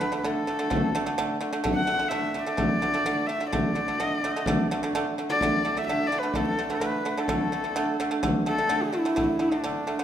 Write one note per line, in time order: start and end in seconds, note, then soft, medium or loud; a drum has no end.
0.00 0.10 D3 medium
0.00 0.10 A3 medium
0.00 0.17 B4 medium
0.12 0.21 D3 medium
0.12 0.22 A3 medium
0.12 frame drum soft
0.17 0.27 B4 medium
0.24 0.43 D3 medium
0.24 0.43 A3 medium
0.24 1.40 A4 medium
0.24 frame drum medium
0.47 0.57 D3 medium
0.47 0.57 A3 medium
0.47 frame drum soft
0.59 0.68 D3 medium
0.59 0.69 A3 medium
0.70 0.89 D3 medium
0.70 0.90 A3 medium
0.70 frame drum medium
0.95 1.04 D3 medium
0.95 1.04 A3 medium
1.06 1.16 D3 medium
1.06 1.16 A3 medium
1.06 frame drum soft
1.18 1.37 D3 loud
1.18 1.37 A3 loud
1.18 frame drum medium
1.41 1.50 D3 medium
1.41 1.51 A3 medium
1.53 1.62 D3 medium
1.53 1.62 A3 medium
1.64 1.83 D3 medium
1.64 1.83 A3 medium
1.64 frame drum medium
1.75 2.09 F#5 medium
1.87 1.97 D3 medium
1.87 1.97 A3 medium
1.99 2.09 D3 medium
1.99 2.09 A3 medium
1.99 frame drum soft
2.08 2.30 D3 medium
2.08 2.31 A3 medium
2.08 2.39 E5 medium
2.08 frame drum soft
2.34 2.44 D3 medium
2.34 2.45 A3 medium
2.34 frame drum soft
2.39 3.28 D5 medium
2.39 2.43 E5 medium
2.46 2.56 D3 medium
2.46 2.56 A3 medium
2.57 2.77 D3 medium
2.57 2.77 A3 medium
2.57 frame drum medium
2.82 2.92 D3 medium
2.82 2.92 A3 medium
2.82 frame drum medium
2.94 3.03 D3 medium
2.94 3.04 A3 medium
2.94 frame drum soft
3.05 3.25 D3 loud
3.05 3.25 A3 loud
3.05 frame drum medium
3.27 3.39 D3 medium
3.27 3.39 A3 medium
3.27 3.50 E5 medium
3.40 3.50 D3 medium
3.40 3.50 A3 medium
3.51 3.72 D3 medium
3.51 3.72 A3 medium
3.51 4.02 D5 medium
3.51 frame drum medium
3.75 3.85 D3 medium
3.75 3.86 A3 medium
3.88 3.98 D3 medium
3.88 3.98 A3 medium
3.88 frame drum soft
4.00 4.19 D3 medium
4.00 4.19 A3 medium
4.00 4.16 D#5 medium
4.00 frame drum medium
4.16 4.31 D5 medium
4.23 4.33 D3 medium
4.23 4.34 A3 medium
4.23 frame drum soft
4.31 4.45 D#5 medium
4.36 4.45 D3 medium
4.36 4.45 A3 medium
4.45 4.66 D3 medium
4.45 4.66 A3 loud
4.45 4.95 D5 medium
4.45 frame drum medium
4.71 4.80 D3 medium
4.71 4.81 A3 medium
4.81 4.92 D3 medium
4.81 4.93 A3 medium
4.81 frame drum soft
4.93 5.13 D3 loud
4.93 5.14 A3 loud
4.93 frame drum medium
5.18 5.27 D3 medium
5.18 5.28 A3 medium
5.30 5.39 D3 medium
5.30 5.39 A3 medium
5.30 5.79 D5 medium
5.41 5.61 D3 medium
5.41 5.61 A3 medium
5.41 frame drum medium
5.65 5.74 D3 medium
5.65 5.74 A3 medium
5.76 5.86 D3 medium
5.76 5.86 A3 medium
5.76 5.87 E5 loud
5.76 frame drum soft
5.87 6.08 D3 medium
5.87 6.08 A3 medium
5.87 6.09 E5 medium
5.87 frame drum medium
6.07 6.20 D5 medium
6.07 frame drum soft
6.12 6.21 D3 medium
6.12 6.21 A3 medium
6.18 6.38 B4 medium
6.23 6.33 D3 medium
6.23 6.33 A3 medium
6.34 6.54 D3 medium
6.34 6.54 A3 medium
6.34 6.48 A4 medium
6.34 frame drum medium
6.48 6.70 A4 medium
6.59 6.68 D3 medium
6.59 6.68 A3 medium
6.69 6.80 D3 medium
6.69 6.80 A3 medium
6.69 frame drum soft
6.74 7.11 B4 medium
6.80 7.01 D3 medium
6.80 7.01 A3 loud
6.80 frame drum medium
7.05 7.15 D3 medium
7.05 7.15 A3 medium
7.11 7.21 B4 medium
7.17 7.27 D3 medium
7.17 7.27 A3 medium
7.17 8.22 A4 medium
7.28 7.48 D3 medium
7.28 7.48 A3 loud
7.28 frame drum medium
7.52 7.62 D3 medium
7.52 7.62 A3 medium
7.64 7.74 D3 medium
7.64 7.74 A3 medium
7.64 frame drum soft
7.75 7.95 D3 loud
7.75 7.95 A3 loud
7.75 frame drum medium
8.00 8.09 D3 medium
8.00 8.10 A3 medium
8.00 frame drum soft
8.11 8.21 D3 medium
8.11 8.21 A3 medium
8.23 8.42 D3 medium
8.23 8.42 A3 loud
8.23 frame drum medium
8.46 8.56 D3 medium
8.46 8.56 A3 medium
8.46 8.84 A4 medium
8.58 8.68 D3 medium
8.58 8.68 A3 medium
8.58 frame drum soft
8.69 8.89 D3 medium
8.69 8.89 A3 loud
8.69 frame drum medium
8.83 9.44 E4 medium
8.93 9.03 D3 medium
8.93 9.03 A3 medium
9.05 9.15 D3 medium
9.05 9.15 A3 medium
9.16 9.36 D3 medium
9.16 9.36 A3 medium
9.16 frame drum medium
9.39 9.50 D3 medium
9.39 9.50 A3 medium
9.39 10.04 D4 medium
9.52 9.62 D3 medium
9.52 9.62 A3 medium
9.52 frame drum soft
9.64 9.83 D3 medium
9.64 9.83 A3 medium
9.64 frame drum medium
9.87 9.97 D3 medium
9.87 9.97 A3 medium
9.87 frame drum soft
9.99 10.04 D3 medium
9.99 10.04 A3 medium